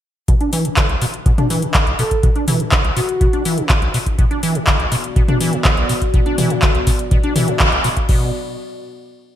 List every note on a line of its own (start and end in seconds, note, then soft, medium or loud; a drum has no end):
0.28 0.35 B2 medium
0.28 kick loud
0.28 closed hi-hat medium
0.41 0.51 D4 medium
0.41 closed hi-hat soft
0.53 0.67 E3 loud
0.53 open hi-hat loud
0.65 0.69 B2 medium
0.65 closed hi-hat medium
0.77 0.87 D3 medium
0.77 kick loud
0.77 clap loud
0.77 closed hi-hat soft
0.89 0.96 B1 medium
0.89 closed hi-hat soft
1.02 1.06 B2 loud
1.02 open hi-hat medium
1.14 closed hi-hat soft
1.26 1.33 B2 medium
1.26 kick loud
1.26 closed hi-hat medium
1.38 1.48 D4 medium
1.38 closed hi-hat soft
1.38 mid tom medium
1.50 1.64 E3 loud
1.50 open hi-hat medium
1.62 1.67 B2 medium
1.62 closed hi-hat medium
1.74 1.85 D3 medium
1.74 kick loud
1.74 clap loud
1.74 closed hi-hat soft
1.87 1.94 B1 medium
1.87 closed hi-hat soft
1.99 2.03 B2 loud
1.99 2.18 A4 medium
1.99 open hi-hat medium
2.11 kick medium
2.11 closed hi-hat soft
2.23 2.30 B2 medium
2.23 kick loud
2.23 closed hi-hat soft
2.36 2.46 D4 medium
2.36 closed hi-hat soft
2.48 2.62 E3 loud
2.48 open hi-hat loud
2.48 mid tom medium
2.60 2.64 B2 medium
2.60 closed hi-hat medium
2.72 2.82 D3 medium
2.72 kick loud
2.72 clap loud
2.72 closed hi-hat soft
2.84 2.91 B1 medium
2.84 closed hi-hat soft
2.96 3.01 B2 loud
2.96 3.65 F#4 loud
2.96 open hi-hat medium
3.09 closed hi-hat medium
3.21 3.28 B2 medium
3.21 kick loud
3.21 closed hi-hat medium
3.33 3.43 D4 medium
3.33 closed hi-hat soft
3.45 3.59 E3 loud
3.45 open hi-hat loud
3.58 3.62 B2 medium
3.58 closed hi-hat soft
3.69 3.80 D3 medium
3.69 kick loud
3.69 clap loud
3.69 closed hi-hat soft
3.82 3.89 B1 medium
3.82 closed hi-hat soft
3.94 3.98 B2 medium
3.94 open hi-hat medium
4.06 kick medium
4.06 closed hi-hat medium
4.18 4.25 B2 medium
4.18 8.05 B3 medium
4.18 8.05 F#4 medium
4.18 8.05 D5 medium
4.18 kick loud
4.18 closed hi-hat soft
4.31 4.41 D4 medium
4.31 closed hi-hat soft
4.43 4.57 E3 loud
4.43 open hi-hat loud
4.55 4.59 B2 medium
4.55 closed hi-hat soft
4.67 4.77 D3 medium
4.67 kick loud
4.67 clap loud
4.67 closed hi-hat soft
4.80 4.86 B1 medium
4.80 closed hi-hat soft
4.92 4.96 B2 loud
4.92 open hi-hat medium
5.04 closed hi-hat soft
5.16 5.23 B2 medium
5.16 kick loud
5.16 closed hi-hat soft
5.28 5.38 D4 medium
5.28 closed hi-hat soft
5.28 mid tom medium
5.41 5.54 E3 loud
5.41 open hi-hat loud
5.53 5.57 B2 medium
5.53 closed hi-hat soft
5.65 5.75 D3 medium
5.65 kick loud
5.65 clap loud
5.65 closed hi-hat soft
5.77 5.84 B1 medium
5.77 closed hi-hat soft
5.89 5.93 B2 loud
5.89 open hi-hat medium
6.02 kick medium
6.02 closed hi-hat soft
6.14 6.21 B2 medium
6.14 kick loud
6.14 closed hi-hat soft
6.26 6.36 D4 medium
6.26 closed hi-hat soft
6.38 6.52 E3 loud
6.38 open hi-hat loud
6.38 mid tom medium
6.50 6.54 B2 medium
6.50 closed hi-hat soft
6.62 6.73 D3 medium
6.62 kick loud
6.62 clap loud
6.62 closed hi-hat soft
6.75 6.82 B1 medium
6.75 closed hi-hat soft
6.87 6.91 B2 loud
6.87 kick medium
6.87 open hi-hat medium
6.99 closed hi-hat soft
7.11 7.18 B2 medium
7.11 kick loud
7.11 closed hi-hat soft
7.23 7.34 D4 medium
7.23 closed hi-hat soft
7.36 7.50 E3 loud
7.36 open hi-hat loud
7.36 mid tom medium
7.48 7.52 B2 medium
7.48 closed hi-hat soft
7.59 7.70 D3 medium
7.59 kick loud
7.59 clap loud
7.59 closed hi-hat soft
7.72 7.79 B1 medium
7.72 closed hi-hat soft
7.84 7.89 B2 loud
7.84 open hi-hat medium
7.97 kick medium
7.97 closed hi-hat soft
8.09 8.32 B2 medium
8.09 kick loud
8.09 crash medium